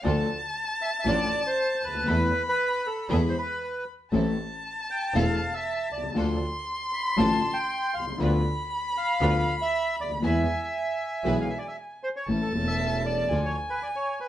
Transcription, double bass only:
\new Staff \with { instrumentName = "Double bass" } { \clef bass \time 4/4 \key e \phrygian \tempo 4 = 118 d,8 r4. a,,8 r4 d,8 | e,8 r4. e,8 r4. | a,,8 r4. e,,8 r4 c,8 | d,8 r4. a,,8 r4 c,8 |
d,8 r4. d,8 r4 d,8 | e,8 r4. b,,8 r4. | \key a \major a,,8 e,,4. d,8 r4. | }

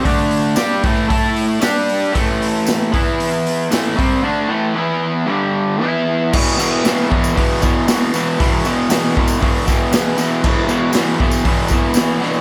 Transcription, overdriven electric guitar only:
\new Staff \with { instrumentName = "Overdriven electric guitar" } { \clef bass \time 4/4 \key a \lydian \tempo 4 = 116 <d a d'>4 <g d' g'>8 <a, e a>8 <a e' a'>4 <g d' g'>4 | <a, e a>4. <e b e'>4. <a, e a>8 <c g c'>8 | <d a d'>8 <a, e a>8 <e b e'>4 <g, d g>4 <e b e'>4 | <e, b, e>8 <e, b, e>8 <e, b, e>8 <e, b, e>8 <e, b, e>8 <e, b, e>8 <e, b, e>8 <e, b, e>8 |
<e, b, e>8 <e, b, e>8 <e, b, e>8 <e, b, e>8 <e, b, e>8 <e, b, e>8 <e, b, e>8 <e, b, e>8 | <e, b, e>8 <e, b, e>8 <e, b, e>8 <e, b, e>8 <e, b, e>8 <e, b, e>8 <e, b, e>8 <e, b, e>8 | }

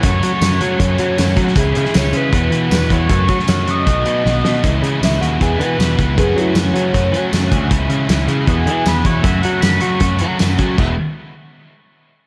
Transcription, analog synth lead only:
\new Staff \with { instrumentName = "Analog synth lead" } { \time 4/4 \key e \major \tempo 4 = 156 cis''2.~ cis''8 r8 | gis'4 cis''8 b'2 cis''8~ | cis''4. dis''2 r8 | r4 e'8 fis'8 gis'8 b'4. |
gis'8 e'8 cis'2. | r2 gis'4 b'8 cis''8 | e''8 fis''8 b''8 cis'''4 r4. | r1 | }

